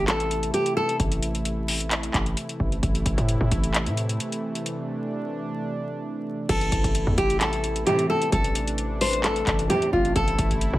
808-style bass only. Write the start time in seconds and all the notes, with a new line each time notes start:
Already playing: A1
1.00 A1
2.14 A1
2.60 A1
2.83 A1
3.06 A1
3.18 A2
3.41 A2
3.52 A1
3.87 A2
6.49 A1
6.72 A1
6.84 A1
7.07 E2
7.18 A1
8.32 A1
9.47 A1
9.93 A1
10.16 A1
10.38 A1
10.73 A2